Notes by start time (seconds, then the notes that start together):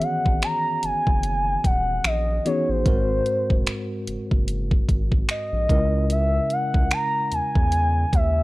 Already playing: D#3 E3 B3 C#4 F#4 G#4 C#5 F#5
0.02 F#5, closed hi-hat
0.26 G#1, kick
0.42 A#5, finger snap, closed hi-hat
0.83 F#1 G#5, closed hi-hat
1.07 F#1, kick
1.23 closed hi-hat
1.64 D#1 F#5, kick, closed hi-hat
2.04 A#1 D#5, finger snap, closed hi-hat
2.45 E3 B3 C#4 D#4 F#4 G#4 C#5, closed hi-hat
2.69 A1 C5
2.86 G#1 G#2 G#3 C4 F#4 A#4, kick, closed hi-hat
3.26 closed hi-hat
3.50 E1, kick
3.67 finger snap, closed hi-hat
4.07 F#1, closed hi-hat
4.31 F#1, kick
4.48 closed hi-hat
4.71 kick
4.89 G#1, kick, closed hi-hat
5.12 kick
5.29 D#5, finger snap, closed hi-hat
5.52 A#1
5.69 C#2 C#3 G#3 C#4 E4 A#4, kick, closed hi-hat
6.10 E5, closed hi-hat
6.50 F#5, closed hi-hat
6.74 C#2, kick
6.91 A#5, finger snap, closed hi-hat
7.28 A#5, closed hi-hat
7.32 E2 G#5
7.55 E2, kick
7.72 closed hi-hat
8.13 D#2 E5, kick, closed hi-hat